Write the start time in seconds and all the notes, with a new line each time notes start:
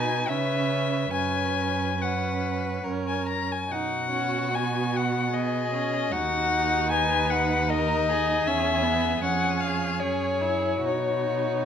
Already playing: B2 D#4 B4 G#5
0.27 C#3 C#4 B4 E5
1.12 F#2 C#4 B4 G#5
1.99 C#4 B4 F#5
2.84 F#2 C#4 A#4
3.07 G#5
3.28 A#5
3.52 G#5
3.68 B2 D#4 F#4 F#5
4.11 C#4
4.52 B3 G#5
4.96 F#5
5.32 B3 G#4 D#5
5.74 C#4
6.12 D#2 D#4 F#4 F#5
6.91 B4 G#5
7.30 F#5
7.68 D#4 A#4 D#5
8.09 G#4
8.47 E2 C#4 E5
8.83 B3
9.22 F2 C#4 G#4 F#5
9.60 F5
10.00 F#2 C#4 C#5
10.41 E4
10.85 B2 D#4 F#4 C#5